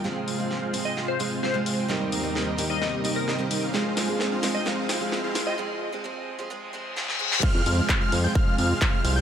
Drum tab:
CC |----------------|----------------|----------------|----------------|
HH |--o---o---o---o-|--o---o---o---o-|--o---o---o---o-|----------------|
CP |----------------|----------------|----------------|----------------|
SD |o---o---o---o---|o---o---o---o---|o-o-o-o-o-o-o-o-|------------oo-o|
BD |----------------|----------------|----------------|----------------|

CC |x---------------|
HH |--o---o---o---o-|
CP |----x-------x---|
SD |----------------|
BD |o---o---o---o---|